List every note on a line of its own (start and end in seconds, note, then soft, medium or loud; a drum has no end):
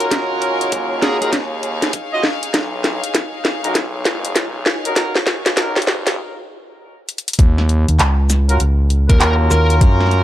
0.00 1.17 C#4 loud
0.00 6.18 D#4 medium
0.00 1.17 F4 medium
0.00 1.17 F#4 medium
0.00 6.18 G#4 medium
0.00 1.17 A#4 loud
0.00 6.18 C#5 medium
0.00 6.18 F5 medium
0.00 closed hi-hat medium
0.11 kick loud
0.11 snare medium
0.11 closed hi-hat medium
0.42 closed hi-hat soft
0.61 closed hi-hat medium
0.72 1.01 D#2 medium
0.72 kick medium
0.72 closed hi-hat medium
1.02 1.92 D#2 medium
1.02 1.15 G#4 medium
1.02 snare medium
1.02 closed hi-hat soft
1.22 1.31 C#4 medium
1.22 1.31 F4 medium
1.22 1.31 F#4 medium
1.22 1.29 G#4 medium
1.22 1.31 A#4 medium
1.22 closed hi-hat medium
1.33 kick loud
1.33 snare medium
1.33 closed hi-hat medium
1.63 closed hi-hat soft
1.82 snare medium
1.82 closed hi-hat medium
1.93 kick loud
1.93 closed hi-hat medium
2.13 2.22 C#4 medium
2.13 2.22 F4 medium
2.13 2.22 F#4 medium
2.13 2.22 D#5 loud
2.23 snare medium
2.43 closed hi-hat medium
2.54 3.00 B1 loud
2.54 kick loud
2.54 snare medium
2.54 closed hi-hat medium
2.84 snare medium
2.84 closed hi-hat soft
3.04 closed hi-hat medium
3.15 kick loud
3.15 snare medium
3.15 closed hi-hat medium
3.45 snare medium
3.45 closed hi-hat soft
3.64 4.04 B1 loud
3.64 3.73 C#4 medium
3.64 3.73 D#4 medium
3.64 3.73 F#4 medium
3.64 3.73 A#4 medium
3.64 closed hi-hat medium
3.75 kick loud
3.75 snare medium
3.75 closed hi-hat medium
4.05 4.34 F#1 loud
4.05 snare medium
4.05 closed hi-hat soft
4.25 closed hi-hat medium
4.36 4.64 B1 loud
4.36 kick loud
4.36 snare medium
4.36 closed hi-hat medium
4.66 snare medium
4.85 4.95 C#4 medium
4.85 4.95 D#4 medium
4.85 4.95 F#4 medium
4.85 4.95 A#4 medium
4.85 closed hi-hat medium
4.96 5.13 C#4 medium
4.96 5.13 D#4 medium
4.96 5.13 F#4 medium
4.96 5.13 A#4 medium
4.96 kick loud
4.96 snare medium
4.96 closed hi-hat medium
5.15 snare medium
5.27 snare medium
5.27 closed hi-hat soft
5.46 snare medium
5.46 closed hi-hat medium
5.57 5.86 B1 loud
5.57 5.74 C#4 medium
5.57 5.74 D#4 medium
5.57 5.74 F#4 medium
5.57 5.74 A#4 medium
5.57 kick loud
5.57 snare loud
5.57 closed hi-hat medium
5.76 snare medium
5.82 closed hi-hat soft
5.87 6.18 F#1 loud
5.87 snare loud
6.07 snare medium
6.07 closed hi-hat soft
7.09 closed hi-hat medium
7.18 closed hi-hat medium
7.28 closed hi-hat medium
7.33 closed hi-hat medium
7.39 7.85 D#2 loud
7.39 kick loud
7.39 closed hi-hat medium
7.58 snare soft
7.69 closed hi-hat soft
7.88 7.98 D#2 loud
7.88 closed hi-hat medium
7.99 8.58 C#2 loud
7.99 clap loud
7.99 closed hi-hat medium
8.30 snare soft
8.30 closed hi-hat soft
8.30 shaker medium
8.49 8.59 C#4 medium
8.49 8.59 F4 medium
8.49 8.59 F#4 medium
8.49 8.59 A#4 medium
8.49 closed hi-hat medium
8.60 9.07 C#2 medium
8.60 closed hi-hat medium
8.90 closed hi-hat soft
9.10 9.49 D#2 medium
9.10 10.23 C#4 loud
9.10 10.23 F4 medium
9.10 10.23 F#4 medium
9.10 9.17 A#4 medium
9.10 10.23 A#4 loud
9.10 kick loud
9.10 closed hi-hat medium
9.21 9.33 A#4 medium
9.21 clap loud
9.21 closed hi-hat medium
9.51 9.80 D#2 loud
9.51 9.72 A#4 medium
9.51 snare soft
9.51 shaker medium
9.70 closed hi-hat medium
9.81 10.23 F#2 loud
9.81 kick loud
9.81 closed hi-hat medium
10.00 snare soft
10.06 snare soft
10.11 snare soft
10.11 closed hi-hat soft